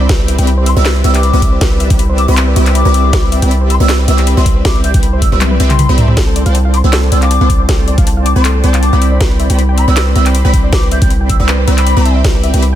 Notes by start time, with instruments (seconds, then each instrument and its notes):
0.01 synth arpeggio sound D5
0.09 supersaw synth C4 G4 B4 D5 E5, synth arpeggio sound B4, kick, snare, closed hi-hat
0.20 synth arpeggio sound B4
0.28 synth arpeggio sound E5, closed hi-hat
0.38 808-style bass C2, supersaw synth C4 G4 B4 D5 E5, synth arpeggio sound G5, closed hi-hat
0.47 synth arpeggio sound B5, closed hi-hat
0.57 synth arpeggio sound C5
0.66 flute C6, synth arpeggio sound E6, closed hi-hat
0.76 808-style bass C2, supersaw synth C4 G4 B4 D5 E5, synth arpeggio sound C5, flute E6
0.85 synth arpeggio sound B4, clap, snare, closed hi-hat
0.96 synth arpeggio sound B4
1.04 808-style bass C2, supersaw synth C4 G4 B4 D5 E5, synth arpeggio sound E5, flute E6, closed hi-hat
1.14 synth arpeggio sound G5, flute D6, clap, closed hi-hat
1.23 synth arpeggio sound B5, closed hi-hat
1.33 808-style bass C2, supersaw synth C4 G4 B4 D5 E5, synth arpeggio sound C5
1.42 synth arpeggio sound E6, kick, closed hi-hat
1.52 synth arpeggio sound C5
1.61 808-style bass C2, supersaw synth C4 G4 B4 D5 E5, synth arpeggio sound B4, kick, snare, closed hi-hat
1.71 synth arpeggio sound B4
1.80 synth arpeggio sound E5, closed hi-hat
1.90 808-style bass C2, supersaw synth C4 G4 B4 D5 E5, synth arpeggio sound G5, kick, closed hi-hat
1.99 synth arpeggio sound B5, closed hi-hat
2.09 synth arpeggio sound C5
2.18 flute D6, synth arpeggio sound E6, closed hi-hat
2.28 808-style bass C2, supersaw synth C4 G4 B4 D5 E5, synth arpeggio sound C5, flute C6
2.37 synth arpeggio sound B4, clap, closed hi-hat
2.47 synth arpeggio sound B4
2.56 808-style bass C2, supersaw synth C4 G4 B4 D5 E5, synth arpeggio sound E5, closed hi-hat
2.66 synth arpeggio sound G5, clap, closed hi-hat
2.75 synth arpeggio sound B5, flute D6, closed hi-hat
2.85 808-style bass C2, supersaw synth C4 G4 B4 D5 E5, synth arpeggio sound C5
2.94 synth arpeggio sound E6, closed hi-hat
3.04 synth arpeggio sound C5
3.13 supersaw synth C4 G4 B4 E5, synth arpeggio sound B4, kick, snare, closed hi-hat
3.23 synth arpeggio sound B4
3.32 synth arpeggio sound E5, closed hi-hat
3.42 808-style bass C2, supersaw synth C4 G4 B4 D5 E5, synth arpeggio sound G5, closed hi-hat
3.51 synth arpeggio sound B5, closed hi-hat
3.61 synth arpeggio sound C5
3.70 flute C6, synth arpeggio sound E6, closed hi-hat
3.80 808-style bass C2, supersaw synth C4 G4 B4 D5 E5, synth arpeggio sound C5, flute E6
3.89 synth arpeggio sound B4, clap, snare, closed hi-hat
3.99 synth arpeggio sound B4
4.08 808-style bass C2, supersaw synth C4 G4 B4 D5 E5, synth arpeggio sound E5, flute E6, closed hi-hat
4.18 synth arpeggio sound G5, clap, closed hi-hat
4.27 synth arpeggio sound B5, closed hi-hat
4.37 808-style bass C2, supersaw synth C4 G4 B4 D5 E5, synth arpeggio sound C5, flute C6
4.46 synth arpeggio sound E6, kick, closed hi-hat
4.56 synth arpeggio sound C5
4.65 808-style bass C2, supersaw synth C4 G4 B4 D5 E5, synth arpeggio sound B4, flute D6, kick, snare, closed hi-hat
4.75 synth arpeggio sound B4
4.84 synth arpeggio sound E5, flute G6, closed hi-hat
4.94 808-style bass C2, supersaw synth C4 G4 B4 D5 E5, synth arpeggio sound G5, flute G6, kick, closed hi-hat
5.03 synth arpeggio sound B5, closed hi-hat
5.13 synth arpeggio sound C5
5.22 synth arpeggio sound E6, flute E6, kick, closed hi-hat
5.32 808-style bass C2, supersaw synth C4 G4 B4 D5 E5, synth arpeggio sound C5, flute E6
5.41 synth arpeggio sound B4, clap, closed hi-hat, high tom
5.51 synth arpeggio sound B4, high tom
5.60 808-style bass C2, supersaw synth C4 G4 B4 D5 E5, synth arpeggio sound E5, closed hi-hat
5.70 synth arpeggio sound G5, flute C6, clap, closed hi-hat, mid tom
5.79 synth arpeggio sound B5, closed hi-hat, mid tom
5.89 808-style bass C2, supersaw synth C4 G4 B4 D5 E5, synth arpeggio sound C5
5.98 synth arpeggio sound E6, closed hi-hat, mid tom
6.08 synth arpeggio sound C5, mid tom
6.17 808-style bass C2, synth arpeggio sound A4, supersaw synth C5 D5 G5 A5, kick, snare, closed hi-hat
6.27 synth arpeggio sound A4
6.36 synth arpeggio sound D5, closed hi-hat
6.46 808-style bass C2, supersaw synth C4 C5 D5 G5 A5, synth arpeggio sound F5, closed hi-hat
6.55 synth arpeggio sound A5, closed hi-hat
6.65 synth arpeggio sound F5
6.74 flute C6, synth arpeggio sound D6, closed hi-hat
6.84 808-style bass C2, supersaw synth C4 C5 D5 G5 A5, synth arpeggio sound C5, flute E6
6.93 synth arpeggio sound A4, clap, snare, closed hi-hat
7.03 synth arpeggio sound A4
7.12 808-style bass C2, supersaw synth C4 C5 D5 G5 A5, synth arpeggio sound D5, flute E6, closed hi-hat
7.22 synth arpeggio sound F5, flute D6, clap, closed hi-hat
7.31 synth arpeggio sound A5, closed hi-hat
7.41 808-style bass C2, supersaw synth C4 C5 D5 G5 A5, synth arpeggio sound F5
7.50 synth arpeggio sound D6, kick, closed hi-hat
7.60 synth arpeggio sound C5
7.69 808-style bass C2, supersaw synth C4 C5 D5 G5 A5, synth arpeggio sound A4, kick, snare, closed hi-hat
7.79 synth arpeggio sound A4
7.88 synth arpeggio sound D5, closed hi-hat
7.98 808-style bass C2, supersaw synth C4 C5 D5 G5 A5, synth arpeggio sound F5, kick, closed hi-hat
8.07 synth arpeggio sound A5, closed hi-hat
8.17 synth arpeggio sound F5
8.26 flute D6, synth arpeggio sound D6, closed hi-hat
8.36 808-style bass C2, supersaw synth C4 C5 D5 G5 A5, synth arpeggio sound C5, flute C6
8.45 synth arpeggio sound A4, clap, closed hi-hat
8.55 synth arpeggio sound A4
8.64 808-style bass C2, supersaw synth C4 C5 D5 G5 A5, synth arpeggio sound D5, closed hi-hat
8.74 synth arpeggio sound F5, clap, closed hi-hat
8.83 synth arpeggio sound A5, flute D6, closed hi-hat
8.93 808-style bass C2, supersaw synth C4 C5 D5 G5 B5, synth arpeggio sound F5
9.02 synth arpeggio sound E6, closed hi-hat
9.12 synth arpeggio sound D5
9.21 synth arpeggio sound B4, supersaw synth C5 D5 G5 B5, kick, snare, closed hi-hat
9.31 synth arpeggio sound B4
9.40 synth arpeggio sound E5, closed hi-hat
9.50 808-style bass C2, supersaw synth C4 C5 D5 G5 B5, synth arpeggio sound G5, closed hi-hat
9.59 synth arpeggio sound B5, closed hi-hat
9.69 synth arpeggio sound G5
9.78 flute B5, synth arpeggio sound E6, closed hi-hat
9.88 808-style bass C2, supersaw synth C4 C5 D5 G5 B5, synth arpeggio sound D5, flute E6
9.97 synth arpeggio sound B4, clap, snare, closed hi-hat
10.07 synth arpeggio sound B4
10.16 808-style bass C2, supersaw synth C4 C5 D5 G5 B5, synth arpeggio sound E5, flute E6, closed hi-hat
10.26 synth arpeggio sound G5, clap, closed hi-hat
10.35 synth arpeggio sound B5, closed hi-hat
10.45 808-style bass C2, supersaw synth C4 C5 D5 G5 B5, synth arpeggio sound G5, flute B5
10.54 synth arpeggio sound E6, kick, closed hi-hat
10.64 synth arpeggio sound D5
10.72 808-style bass C2, supersaw synth C4 C5 D5 G5 B5, synth arpeggio sound B4, flute D6, kick, snare, closed hi-hat
10.83 synth arpeggio sound B4
10.92 synth arpeggio sound E5, flute G6, closed hi-hat
11.02 808-style bass C2, supersaw synth C4 C5 D5 G5 B5, synth arpeggio sound G5, flute G6, kick, closed hi-hat
11.11 synth arpeggio sound B5, closed hi-hat
11.21 synth arpeggio sound G5
11.29 synth arpeggio sound E6, flute E6, kick, closed hi-hat
11.40 808-style bass C2, supersaw synth C4 C5 D5 G5 B5, synth arpeggio sound D5, flute E6
11.48 synth arpeggio sound B4, clap, closed hi-hat
11.59 synth arpeggio sound B4
11.67 808-style bass C2, supersaw synth C4 C5 D5 G5 B5, synth arpeggio sound E6, closed hi-hat
11.78 flute B5, synth arpeggio sound E6, clap, closed hi-hat
11.86 synth arpeggio sound D6, closed hi-hat
11.97 808-style bass C2, supersaw synth C4 C5 D5 G5 B5, synth arpeggio sound D6
12.05 synth arpeggio sound E5, closed hi-hat
12.16 synth arpeggio sound E5
12.24 supersaw synth C4 G4 B4 E5, synth arpeggio sound B4, kick, snare, closed hi-hat
12.35 synth arpeggio sound B4
12.43 synth arpeggio sound E5, closed hi-hat
12.53 808-style bass C2, supersaw synth C4 G4 B4 D5 E5, synth arpeggio sound G5, closed hi-hat
12.62 synth arpeggio sound B5, closed hi-hat